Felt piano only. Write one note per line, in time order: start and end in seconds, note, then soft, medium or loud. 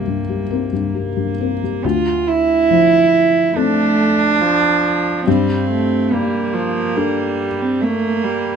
0.00 1.86 C2 soft
0.00 0.07 G2 soft
0.00 0.29 G3 soft
0.00 0.50 C4 soft
0.00 0.51 A#4 soft
0.00 1.35 E5 soft
0.00 1.86 F5 medium
0.07 0.42 G2 soft
0.29 0.64 G3 soft
0.50 0.70 C4 soft
0.50 0.71 A#4 soft
0.73 1.08 G2 soft
0.95 1.31 G3 soft
1.17 1.53 G2 soft
1.40 1.60 C4 soft
1.40 1.60 A#4 soft
1.63 1.84 G3 soft
1.84 5.23 D2 medium
2.71 4.07 F3 soft
3.56 5.23 C4 soft
3.56 5.23 A4 medium
5.27 8.56 G2 medium
6.12 7.47 A#3 soft
6.96 8.56 D4 soft
6.96 8.56 A4 medium